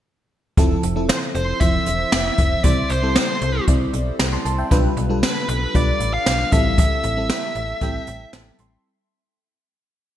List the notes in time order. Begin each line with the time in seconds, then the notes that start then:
0.57 F1 F3 C4 E4 A4, kick, closed hi-hat
0.83 F1, closed hi-hat
0.96 F3 C4 E4 A4
1.09 C5, snare, closed hi-hat
1.35 F1 C5, closed hi-hat
1.60 F1 F3 C4 E4 C5 E5, kick, closed hi-hat
1.86 E1, closed hi-hat
2.12 F1, snare, closed hi-hat
2.38 F1, kick, closed hi-hat
2.64 C2 G3 C4 E4 C5 D5, kick, closed hi-hat
2.90 C2 C5, closed hi-hat
3.02 G3 C4 E4 A4
3.15 C5, snare, closed hi-hat
3.41 C2, closed hi-hat
3.68 C2 G3 C4 E4 D5, kick, closed hi-hat
3.93 B1, closed hi-hat
4.19 C2, snare, closed hi-hat
4.33 A5 C6
4.45 C2 A5, closed hi-hat
4.58 E5 G5
4.71 B1 G3 D4 F4 B4, kick, closed hi-hat
4.97 B1, closed hi-hat
5.09 G3 D4 F4 A4
5.23 B4, snare, closed hi-hat
5.49 B1 B4, closed hi-hat
5.74 B1 G3 D4 F4 B4 D5, kick, closed hi-hat
6.00 A1, closed hi-hat
6.14 F5
6.26 B1, snare, closed hi-hat
6.52 A1 G3 C4 E4 A4 E5, kick, closed hi-hat
6.78 E5, kick, closed hi-hat
7.03 A1, closed hi-hat
7.17 G3 C4 E4 A4
7.29 snare, closed hi-hat
7.55 A1 E5, closed hi-hat
7.81 A1 G3 C4 E4 A4 G5, kick, closed hi-hat
8.07 A1, closed hi-hat
8.33 A1 A5, snare, closed hi-hat
8.59 A1 C6, closed hi-hat